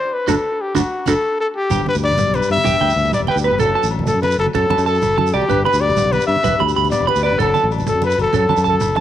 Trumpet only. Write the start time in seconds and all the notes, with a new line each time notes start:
Already playing: C5
0.14 B4
0.29 A4
0.61 G4
0.76 F#4
1.09 A4
1.40 A4
1.56 G4
1.89 B4
2.04 D5
2.35 B4
2.52 E5
3.14 D5
3.29 B4
3.46 B4
3.60 A4
4.07 A4
4.22 B4
4.39 A4
4.54 A4
4.87 A4
5.19 A4
5.34 G4
5.65 B4
5.81 D5
6.12 B4
6.27 E5
6.91 D5
7.08 B4
7.24 B4
7.41 A4
7.88 A4
8.05 B4
8.21 A4
8.37 A4
8.68 A4